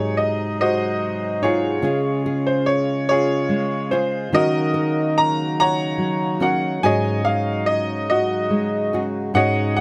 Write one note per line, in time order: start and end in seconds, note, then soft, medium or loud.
0.00 1.83 G#2 medium
0.00 1.82 C3 medium
0.00 1.82 F#3 medium
0.00 4.30 G#3 medium
0.00 1.41 D#4 medium
0.00 1.81 D#4 medium
0.00 1.41 F#4 medium
0.00 1.41 G#4 medium
0.00 4.30 G#4 medium
0.00 0.15 C#5 medium
0.17 0.55 D#5 medium
0.61 1.81 F#4 medium
0.61 1.81 C5 medium
0.61 1.39 D#5 medium
1.42 1.78 D#4 medium
1.42 2.64 F4 medium
1.42 2.64 G#4 medium
1.42 1.83 G#4 medium
1.42 2.49 C#5 medium
1.82 4.32 C#3 medium
1.82 6.80 C#3 medium
1.82 3.91 C#4 medium
1.82 3.91 F4 medium
1.82 4.31 F4 medium
1.82 2.25 G#4 medium
2.26 3.92 G#4 medium
2.47 2.68 C5 medium
2.66 3.07 C#5 medium
3.09 4.31 F4 medium
3.09 4.31 G#4 medium
3.09 3.94 C#5 medium
3.49 4.28 G#3 medium
3.91 4.33 C#4 soft
3.91 4.29 F4 medium
3.91 4.34 G#4 medium
3.91 4.34 C5 medium
4.32 6.78 D#3 medium
4.32 6.81 F#3 medium
4.32 6.81 A#3 medium
4.32 6.40 C#4 medium
4.32 9.80 D#4 medium
4.32 6.41 F#4 medium
4.32 9.31 F#4 medium
4.32 4.73 A#4 medium
4.32 5.55 A#4 medium
4.32 5.20 D#5 loud
4.37 5.56 F#4 medium
4.74 6.40 A#4 medium
5.18 5.56 A#5 loud
5.60 6.81 C#5 medium
5.60 6.41 F#5 medium
5.60 6.45 A#5 loud
5.98 8.50 F#3 medium
6.40 6.83 C#4 medium
6.40 6.83 F#4 medium
6.40 6.78 A#4 medium
6.40 6.85 F#5 medium
6.82 9.33 G#2 medium
6.82 9.80 C#3 medium
6.82 9.80 F#3 medium
6.82 9.80 G#3 medium
6.82 8.93 C#4 medium
6.82 8.94 F#4 medium
6.82 7.24 G#4 medium
6.82 7.65 D#5 medium
6.82 7.26 G#5 medium
6.86 8.06 C#5 medium
7.24 8.92 G#4 medium
7.24 7.64 F5 medium
7.66 8.08 D#5 medium
8.10 9.31 F#4 medium
8.10 8.99 D#5 medium
8.50 9.29 G#3 medium
8.93 9.34 C#4 medium
8.93 9.35 F#4 medium
8.93 9.35 G#4 medium
9.34 9.80 G#2 medium
9.34 9.80 C#4 medium
9.34 9.80 F#4 medium
9.34 9.80 G#4 medium
9.34 9.75 G#4 medium
9.34 9.80 C#5 medium
9.34 9.80 D#5 medium
9.34 9.73 F#5 medium
9.76 9.80 G#4 medium
9.76 9.80 F#5 medium